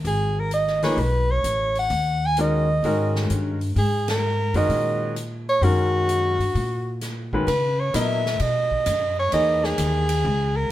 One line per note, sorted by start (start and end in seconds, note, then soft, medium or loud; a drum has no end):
0.04 0.94 G#1 medium
0.04 0.41 G#4 medium
0.04 open hi-hat soft
0.40 0.53 A#4 medium
0.51 0.82 D#5 medium
0.51 closed hi-hat soft
0.67 snare soft
0.82 0.96 F3 medium
0.82 0.97 A#3 medium
0.82 0.97 D#4 medium
0.82 0.97 G#4 medium
0.82 0.97 B4 medium
0.82 1.00 C#5 medium
0.82 snare soft
0.82 open hi-hat soft
0.97 1.41 B1 medium
0.97 1.33 B4 medium
0.97 open hi-hat soft
1.31 1.77 C#5 medium
1.44 1.87 A1 medium
1.44 closed hi-hat medium
1.75 2.27 F#5 medium
1.75 open hi-hat soft
1.90 2.79 D#2 medium
1.90 open hi-hat soft
2.26 2.39 G#5 medium
2.37 2.66 D#3 medium
2.37 2.66 G#3 medium
2.37 2.66 C#4 medium
2.37 2.66 F#4 medium
2.37 2.66 A#4 medium
2.37 3.28 D#5 medium
2.37 closed hi-hat medium
2.83 3.26 G#2 medium
2.83 3.56 D#3 medium
2.83 3.56 G#3 medium
2.83 3.56 C#4 medium
2.83 3.56 F#4 medium
2.83 3.56 A#4 medium
2.83 open hi-hat soft
3.15 snare medium
3.30 3.73 G2 medium
3.30 closed hi-hat medium
3.61 open hi-hat soft
3.76 4.50 G#2 medium
3.76 4.07 G#4 medium
3.76 open hi-hat soft
4.08 4.52 A#4 medium
4.08 snare medium
4.08 ride medium
4.53 4.68 F#2 medium
4.53 5.13 D#3 medium
4.53 5.13 G#3 medium
4.53 5.13 C#4 medium
4.53 5.14 F#4 medium
4.53 5.14 A#4 medium
4.53 5.13 D#5 medium
4.53 open hi-hat soft
4.69 5.58 A#2 medium
4.69 open hi-hat soft
5.16 closed hi-hat medium
5.49 5.65 C#5 medium
5.61 6.35 F#2 medium
5.61 6.34 D#3 medium
5.61 6.34 G#3 soft
5.61 6.34 C#4 medium
5.61 7.02 F#4 medium
5.61 6.34 F#4 soft
5.61 6.34 A#4 medium
5.61 open hi-hat soft
6.09 closed hi-hat medium
6.39 6.53 G2 medium
6.39 open hi-hat soft
6.55 7.43 A#2 medium
6.55 open hi-hat soft
7.01 snare soft
7.01 closed hi-hat medium
7.33 7.46 D#3 medium
7.33 7.46 G#3 medium
7.33 7.47 C#4 medium
7.33 7.47 F#4 medium
7.33 7.47 B4 medium
7.33 kick soft
7.47 7.92 C#3 medium
7.47 7.81 B4 medium
7.47 ride medium
7.80 7.94 C#5 medium
7.94 8.39 A#2 medium
7.94 8.22 F#3 medium
7.94 8.22 B3 medium
7.94 8.22 E4 medium
7.94 8.22 A#4 medium
7.94 8.22 D#5 medium
7.94 8.43 E5 medium
7.94 hi-hat pedal medium
7.94 ride medium
8.26 snare medium
8.39 8.85 B2 medium
8.39 9.18 D#5 medium
8.39 ride medium
8.71 kick soft
8.86 9.31 F#2 medium
8.86 hi-hat pedal medium
8.86 ride medium
9.19 9.32 C#5 medium
9.32 9.77 E2 medium
9.32 10.04 E3 medium
9.32 10.04 A#3 medium
9.32 10.04 D#4 medium
9.32 10.04 G#4 medium
9.32 10.04 C#5 medium
9.32 9.67 D#5 medium
9.32 ride medium
9.64 10.58 G#4 medium
9.64 snare medium
9.78 10.23 D#2 medium
9.78 hi-hat pedal medium
9.78 ride medium
10.09 ride medium
10.25 10.69 C#2 medium
10.56 10.71 A#4 medium